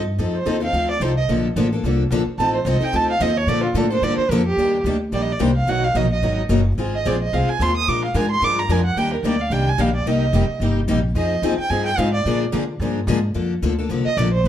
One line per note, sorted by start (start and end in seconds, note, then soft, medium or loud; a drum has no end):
0.00 0.18 G2 medium
0.18 0.45 F2 medium
0.18 0.37 F3 medium
0.18 0.37 C4 medium
0.18 0.37 D#4 medium
0.18 0.37 A4 medium
0.35 0.60 C5 medium
0.46 0.72 D#2 medium
0.46 0.56 F3 medium
0.46 0.56 C4 medium
0.46 0.56 D#4 medium
0.46 0.56 A4 medium
0.60 0.73 C4 soft
0.60 0.73 D#4 soft
0.60 0.72 A4 medium
0.60 0.88 F5 medium
0.73 1.00 D2 medium
0.73 0.91 F3 medium
0.73 0.92 C4 medium
0.73 0.92 D#4 medium
0.73 0.92 A4 medium
0.91 1.04 D5 medium
1.00 1.27 C2 medium
1.00 1.11 F3 medium
1.00 1.11 C4 medium
1.00 1.11 D#4 medium
1.00 1.11 A4 medium
1.00 1.16 C5 medium
1.17 1.24 D#5 medium
1.28 1.55 A#1 medium
1.28 1.47 D3 medium
1.28 1.47 F3 medium
1.28 1.47 A#3 medium
1.28 1.47 D4 medium
1.28 1.47 A4 medium
1.56 1.82 A1 medium
1.56 1.66 D3 medium
1.56 1.66 F3 medium
1.56 1.66 A#3 medium
1.56 1.66 D4 medium
1.56 1.67 A4 medium
1.73 1.84 A#3 soft
1.73 1.84 D4 soft
1.73 1.83 A4 medium
1.84 2.10 C2 medium
1.84 2.02 D3 medium
1.84 2.02 F3 medium
1.84 2.02 A#3 medium
1.84 2.03 D4 medium
1.84 2.03 A4 medium
2.10 2.25 A#1 medium
2.10 2.21 D3 medium
2.10 2.21 F3 medium
2.10 2.21 A#3 medium
2.10 2.21 D4 loud
2.10 2.22 A4 medium
2.26 muted upright bass stroke soft
2.38 2.64 A1 medium
2.38 2.57 F3 medium
2.38 2.57 C4 medium
2.38 2.57 D#4 medium
2.38 2.58 A4 medium
2.38 2.53 A5 medium
2.56 2.69 C5 medium
2.65 2.79 C2 loud
2.65 2.76 F3 medium
2.65 2.76 C4 medium
2.65 2.76 D#4 medium
2.65 2.77 A4 loud
2.65 2.85 D#5 medium
2.80 2.92 C4 soft
2.80 2.92 D#4 medium
2.80 2.92 A4 medium
2.80 2.97 G5 medium
2.80 muted upright bass stroke soft
2.93 3.20 D2 medium
2.93 3.11 F3 medium
2.93 3.11 C4 medium
2.93 3.11 D#4 medium
2.93 3.12 A4 medium
2.93 3.10 A5 loud
3.11 3.23 F5 medium
3.20 3.46 D#2 loud
3.20 3.31 F3 medium
3.20 3.30 C4 medium
3.20 3.31 D#4 loud
3.20 3.31 A4 medium
3.20 3.39 D#5 medium
3.38 3.50 C#5 medium
3.47 3.74 A#2 medium
3.47 3.66 D3 medium
3.47 3.66 F3 medium
3.47 3.66 A#3 medium
3.47 3.67 D4 medium
3.47 3.67 A4 medium
3.47 3.63 D5 loud
3.64 3.79 F4 medium
3.74 4.01 A2 medium
3.74 3.85 D3 medium
3.74 3.85 F3 medium
3.74 3.85 A#3 medium
3.74 3.86 D4 medium
3.74 3.85 A4 medium
3.74 3.91 A4 medium
3.90 4.02 A#3 soft
3.90 4.03 D4 medium
3.90 4.02 A4 medium
3.90 4.05 C5 medium
4.02 4.16 G2 medium
4.02 4.21 D3 medium
4.02 4.21 F3 medium
4.02 4.21 A#3 medium
4.02 4.22 D4 medium
4.02 4.21 A4 medium
4.02 4.18 D5 loud
4.18 4.32 C5 medium
4.18 muted upright bass stroke soft
4.29 4.56 F2 medium
4.29 4.41 D3 medium
4.29 4.41 F3 medium
4.29 4.41 A#3 medium
4.29 4.41 D4 medium
4.29 4.41 A4 loud
4.29 4.46 A#4 medium
4.47 4.83 G4 medium
4.57 4.83 D#2 medium
4.57 4.76 D#3 medium
4.57 4.76 G3 medium
4.57 4.77 A#3 medium
4.57 4.77 D4 medium
4.57 4.77 G4 medium
4.84 5.11 D2 medium
4.84 4.95 D#3 medium
4.84 4.96 G3 medium
4.84 4.96 A#3 medium
4.84 4.96 D4 medium
4.84 4.96 G4 medium
5.12 5.39 A#1 medium
5.12 5.30 D#3 medium
5.12 5.31 G3 medium
5.12 5.31 A#3 medium
5.12 5.31 D4 medium
5.12 5.31 G4 medium
5.12 5.24 D5 medium
5.22 5.34 D#5 medium
5.32 5.44 D5 medium
5.39 5.66 C2 medium
5.39 5.50 D#3 medium
5.39 5.50 G3 medium
5.39 5.50 A#3 medium
5.39 5.50 D4 medium
5.39 5.50 G4 medium
5.39 5.56 C5 medium
5.57 5.71 F5 medium
5.67 5.94 B1 medium
5.67 5.85 B2 medium
5.67 5.86 D#3 medium
5.67 5.86 F#3 medium
5.67 5.86 A#3 medium
5.67 5.86 B3 medium
5.67 5.86 D#4 medium
5.67 5.86 F#4 medium
5.67 5.87 A#4 medium
5.67 5.86 F#5 medium
5.84 5.98 F5 medium
5.95 6.21 A#1 medium
5.95 6.05 B2 medium
5.95 6.05 D#3 medium
5.95 6.05 F#3 medium
5.95 6.05 A#3 medium
5.95 6.05 B3 medium
5.95 6.05 D#4 medium
5.95 6.05 F#4 medium
5.95 6.05 A#4 medium
5.95 6.11 D#5 medium
6.13 6.37 D#5 medium
6.22 6.49 G#1 medium
6.22 6.41 B2 medium
6.22 6.41 D#3 medium
6.22 6.41 F#3 medium
6.22 6.41 A#3 medium
6.22 6.41 B3 medium
6.22 6.41 D#4 medium
6.22 6.41 F#4 medium
6.22 6.41 A#4 medium
6.49 6.76 F#1 loud
6.49 6.59 B2 medium
6.49 6.60 D#3 medium
6.49 6.60 F#3 medium
6.49 6.60 A#3 medium
6.49 6.60 B3 medium
6.49 6.60 D#4 medium
6.49 6.60 F#4 loud
6.49 6.61 A#4 medium
6.78 7.04 G#1 medium
6.78 6.96 G#3 medium
6.78 6.96 C4 medium
6.78 6.96 F4 medium
6.78 6.96 G#4 medium
6.95 7.09 D#5 medium
7.05 7.32 A#1 medium
7.05 7.15 G#3 medium
7.05 7.15 C4 medium
7.05 7.15 F4 medium
7.05 7.16 G#4 medium
7.05 7.21 D5 medium
7.23 7.35 D#5 medium
7.33 7.47 C2 medium
7.33 7.51 G#3 medium
7.33 7.51 C4 medium
7.33 7.51 F4 medium
7.33 7.51 G#4 medium
7.33 7.51 F5 medium
7.49 7.64 G#5 medium
7.49 muted upright bass stroke soft
7.59 7.86 D#2 medium
7.59 7.70 G#3 medium
7.59 7.70 C4 medium
7.59 7.71 F4 medium
7.59 7.71 G#4 medium
7.59 7.76 C6 medium
7.77 7.90 D#6 loud
7.87 8.14 A#2 medium
7.87 8.05 F3 medium
7.87 8.06 G#3 medium
7.87 8.06 D4 medium
7.87 8.06 F4 medium
7.87 8.06 A#4 medium
7.87 8.03 D6 medium
8.05 8.18 F5 medium
8.14 8.41 G#2 medium
8.14 8.24 F3 medium
8.14 8.24 G#3 medium
8.14 8.25 D4 medium
8.14 8.25 F4 medium
8.14 8.25 A#4 medium
8.14 8.30 G#5 medium
8.31 8.46 C6 loud
8.41 8.68 G2 medium
8.41 8.60 F3 medium
8.41 8.60 G#3 medium
8.41 8.60 D4 medium
8.41 8.60 F4 medium
8.41 8.60 A#4 medium
8.41 8.61 D6 medium
8.59 8.73 A#5 medium
8.69 8.96 F2 medium
8.69 8.79 F3 medium
8.69 8.80 G#3 medium
8.69 8.80 D4 medium
8.69 8.80 F4 medium
8.69 8.80 A#4 medium
8.69 8.85 G#5 medium
8.85 8.99 F#5 medium
8.96 9.22 D#2 medium
8.96 9.15 D#3 medium
8.96 9.15 G3 medium
8.96 9.15 A#3 medium
8.96 9.16 D4 medium
8.96 9.16 G4 medium
8.96 9.13 G5 medium
9.14 9.28 A#4 medium
9.23 9.50 D2 medium
9.23 9.34 D#3 medium
9.23 9.35 G3 medium
9.23 9.35 A#3 medium
9.23 9.35 D4 medium
9.23 9.35 G4 medium
9.23 9.42 D5 medium
9.41 9.54 F5 medium
9.50 9.77 C2 medium
9.50 9.69 D#3 medium
9.50 9.70 G3 medium
9.50 9.70 A#3 medium
9.50 9.70 D4 medium
9.50 9.70 G4 medium
9.50 9.70 G5 medium
9.69 9.82 G#5 loud
9.78 10.05 A#1 medium
9.78 9.89 D#3 medium
9.78 9.89 G3 medium
9.78 9.89 A#3 medium
9.78 9.89 D4 medium
9.78 9.89 G4 medium
9.78 9.95 F5 medium
9.95 10.09 D5 medium
10.06 10.32 C2 medium
10.06 10.25 C3 medium
10.06 10.25 G3 medium
10.06 10.25 A#3 medium
10.06 10.25 D#4 medium
10.06 10.25 G4 medium
10.06 10.62 D#5 medium
10.33 10.47 F1 loud
10.33 10.43 C3 medium
10.33 10.44 G3 medium
10.33 10.44 A#3 medium
10.33 10.44 D#4 medium
10.33 10.44 G4 medium
10.49 muted upright bass stroke soft
10.60 10.87 G1 medium
10.60 10.79 C3 medium
10.60 10.79 G3 medium
10.60 10.79 A#3 medium
10.60 10.80 D#4 medium
10.60 10.80 G4 medium
10.88 11.14 A#1 medium
10.88 10.98 C3 medium
10.88 10.98 G3 medium
10.88 10.98 A#3 medium
10.88 10.98 D#4 loud
10.88 10.99 G4 medium
11.15 11.41 F2 medium
11.15 11.34 F3 medium
11.15 11.34 C4 medium
11.15 11.34 D#4 medium
11.15 11.34 G#4 medium
11.15 11.56 D#5 medium
11.42 11.57 D#2 medium
11.42 11.53 F3 medium
11.42 11.53 C4 medium
11.42 11.53 D#4 medium
11.42 11.53 G#4 medium
11.58 11.72 G5 medium
11.58 muted upright bass stroke soft
11.70 11.97 G2 medium
11.70 11.89 F3 medium
11.70 11.89 C4 medium
11.70 11.89 D#4 medium
11.70 11.89 G#4 medium
11.70 11.85 G#5 medium
11.86 12.00 G5 loud
11.98 12.24 G#2 loud
11.98 12.08 F3 medium
11.98 12.08 C4 medium
11.98 12.08 D#4 medium
11.98 12.09 G#4 medium
11.98 12.13 F5 medium
12.14 12.39 D5 medium
12.25 12.52 A#2 medium
12.25 12.44 D3 medium
12.25 12.44 F3 medium
12.25 12.44 G#3 medium
12.25 12.44 A#3 medium
12.25 12.44 D4 medium
12.25 12.44 F4 medium
12.25 12.44 G#4 medium
12.25 12.44 A#4 medium
12.52 12.62 D3 medium
12.52 12.79 D3 medium
12.52 12.63 F3 medium
12.52 12.63 G#3 medium
12.52 12.63 A#3 medium
12.52 12.63 D4 medium
12.52 12.63 F4 loud
12.52 12.63 G#4 medium
12.52 12.63 A#4 medium
12.79 13.06 G2 medium
12.79 12.99 D3 medium
12.79 12.99 F3 medium
12.79 12.98 G#3 medium
12.79 12.99 A#3 medium
12.79 12.99 D4 medium
12.79 12.99 F4 medium
12.79 12.99 G#4 medium
12.79 12.99 A#4 medium
13.07 13.34 G#2 loud
13.07 13.18 D3 medium
13.07 13.18 F3 medium
13.07 13.17 G#3 medium
13.07 13.18 A#3 loud
13.07 13.18 D4 loud
13.07 13.18 F4 medium
13.07 13.18 G#4 loud
13.07 13.18 A#4 loud
13.34 13.61 F2 medium
13.34 13.53 D3 medium
13.34 13.53 F3 medium
13.34 13.53 A#3 medium
13.34 13.53 D4 medium
13.34 13.53 A4 medium
13.62 13.88 D2 medium
13.62 13.72 D3 medium
13.62 13.72 F3 medium
13.62 13.73 A#3 medium
13.62 13.73 D4 medium
13.62 13.73 A4 medium
13.79 13.90 A#3 soft
13.79 13.90 D4 soft
13.79 13.89 A4 medium
13.89 14.04 C2 medium
13.89 14.08 D3 medium
13.89 14.08 F3 medium
13.89 14.08 A#3 medium
13.89 14.08 D4 medium
13.89 14.08 A4 medium
14.05 14.19 D#5 medium
14.05 muted upright bass stroke soft
14.17 14.43 A#1 loud
14.17 14.27 D3 medium
14.17 14.27 F3 medium
14.17 14.28 A#3 medium
14.17 14.28 D4 medium
14.17 14.28 A4 medium
14.17 14.32 D5 medium
14.33 14.47 C5 medium
14.44 14.48 G1 medium
14.44 14.48 D3 medium